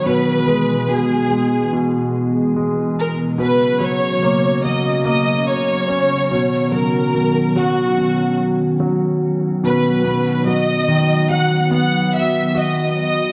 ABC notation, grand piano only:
X:1
M:4/4
L:1/8
Q:1/4=72
K:B
V:1 name="Grand piano" clef=bass
B,, G, B,, G, B,,2 G,2 | B,, F, A, F, A,2 C B,, | F, B,, F, B,,2 F,2 B,, | B,, F, D, F, B,2 F2 |]